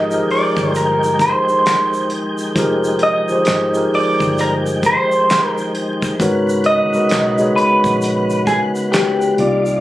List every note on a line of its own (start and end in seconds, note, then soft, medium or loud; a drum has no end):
0.00 0.21 G#1 medium
0.00 6.16 D#3 medium
0.00 0.10 F3 medium
0.00 6.15 G#3 medium
0.00 0.11 D#4 medium
0.00 0.12 G4 medium
0.00 0.13 G#4 medium
0.00 0.14 A#4 medium
0.00 0.31 D#5 loud
0.00 6.16 G5 medium
0.10 1.72 F3 medium
0.10 1.72 D#4 medium
0.10 1.73 G4 medium
0.10 1.73 G#4 medium
0.10 1.74 A#4 medium
0.10 shaker medium
0.30 0.77 D5 medium
0.30 open hi-hat soft
0.57 1.32 G1 medium
0.57 kick loud
0.57 shaker soft
0.75 1.22 A#4 medium
0.75 closed hi-hat medium
0.75 shaker medium
1.03 shaker soft
1.19 2.08 C5 medium
1.19 kick medium
1.19 closed hi-hat medium
1.19 shaker soft
1.49 shaker soft
1.66 finger snap medium
1.66 snare loud
1.66 clap loud
1.66 closed hi-hat medium
1.66 shaker medium
1.93 shaker soft
2.10 closed hi-hat medium
2.38 shaker soft
2.55 3.16 F1 loud
2.55 3.21 F3 loud
2.55 3.21 D#4 medium
2.55 3.22 G4 medium
2.55 3.22 G#4 medium
2.55 3.23 A#4 medium
2.55 kick loud
2.55 closed hi-hat medium
2.55 shaker medium
2.84 shaker medium
2.99 3.94 D#5 loud
2.99 closed hi-hat medium
3.29 3.69 F3 medium
3.29 3.70 D#4 medium
3.29 3.70 G4 medium
3.29 3.70 G#4 medium
3.29 3.71 C5 medium
3.29 muted fingered electric bass stroke soft
3.29 shaker soft
3.45 3.85 G#1 medium
3.45 finger snap medium
3.45 snare loud
3.45 clap medium
3.45 closed hi-hat loud
3.45 shaker medium
3.74 5.35 F3 medium
3.74 5.36 D#4 medium
3.74 5.36 G4 medium
3.74 5.37 G#4 medium
3.74 5.37 A#4 medium
3.74 shaker medium
3.94 4.40 D5 medium
3.94 open hi-hat soft
4.20 4.95 G1 medium
4.20 kick loud
4.20 shaker soft
4.38 4.53 A#4 medium
4.38 closed hi-hat medium
4.38 shaker medium
4.66 shaker soft
4.83 5.47 C5 medium
4.83 kick medium
4.83 closed hi-hat medium
4.83 shaker soft
5.12 shaker soft
5.30 finger snap medium
5.30 snare loud
5.30 clap loud
5.30 closed hi-hat medium
5.30 shaker medium
5.47 5.72 A#4 medium
5.58 shaker soft
5.75 closed hi-hat medium
6.02 kick loud
6.02 shaker soft
6.19 6.80 G#1 loud
6.19 9.35 C#3 medium
6.19 6.85 G#3 loud
6.19 9.35 B3 medium
6.19 6.85 D#4 medium
6.19 6.85 F#4 medium
6.19 6.86 A#4 medium
6.19 6.86 B4 medium
6.19 6.86 C#5 loud
6.19 9.35 F#5 medium
6.19 kick loud
6.19 closed hi-hat medium
6.19 shaker medium
6.49 shaker medium
6.64 7.53 D#5 loud
6.64 closed hi-hat medium
6.93 7.33 G#3 medium
6.93 7.33 D#4 medium
6.93 7.34 F#4 medium
6.93 7.34 A#4 medium
6.93 7.34 B4 medium
6.93 7.35 D#5 medium
6.93 muted fingered electric bass stroke medium
6.93 shaker soft
7.09 7.48 B1 medium
7.09 finger snap medium
7.09 snare loud
7.09 clap loud
7.09 closed hi-hat medium
7.09 shaker medium
7.38 8.99 G#3 medium
7.38 8.99 D#4 medium
7.38 9.00 F#4 medium
7.38 9.00 G#4 medium
7.38 9.00 B4 medium
7.38 9.01 C#5 medium
7.38 shaker medium
7.56 8.50 B4 medium
7.56 closed hi-hat medium
7.84 8.59 A#1 medium
7.84 kick loud
7.84 shaker soft
8.02 closed hi-hat loud
8.02 shaker medium
8.30 shaker soft
8.47 8.59 G#4 medium
8.47 kick medium
8.47 closed hi-hat medium
8.47 shaker soft
8.75 shaker soft
8.92 9.61 G4 medium
8.92 finger snap medium
8.92 snare loud
8.92 clap loud
8.92 closed hi-hat medium
8.92 shaker medium
9.21 shaker soft
9.37 9.80 C2 loud
9.37 9.80 C3 medium
9.37 9.80 D#3 medium
9.37 9.80 A#3 medium
9.37 9.80 D#4 medium
9.37 9.80 F4 medium
9.37 9.80 D5 medium
9.37 closed hi-hat medium
9.66 shaker soft